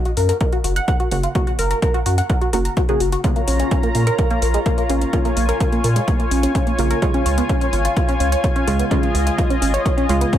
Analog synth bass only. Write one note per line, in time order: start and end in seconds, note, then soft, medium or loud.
0.17 0.32 F#2 medium
0.64 0.79 F#1 loud
1.11 1.27 F#1 medium
1.59 1.74 F#1 medium
2.06 2.21 F#2 medium
2.53 2.68 F#1 loud
3.00 3.16 F#1 medium
3.48 3.63 A#1 medium
3.95 4.10 A#2 medium
4.42 4.57 A#1 loud
4.89 5.05 A#1 medium
5.37 5.52 A#1 loud
5.84 5.99 A#2 medium
6.31 6.46 A#1 loud
6.79 6.94 A#1 medium
7.26 7.41 C#2 medium
7.73 7.88 G#1 medium
8.20 8.35 C#2 loud
8.67 8.82 C#2 loud
9.15 9.30 C#2 medium
9.62 9.77 G#1 medium
10.09 10.24 C#2 loud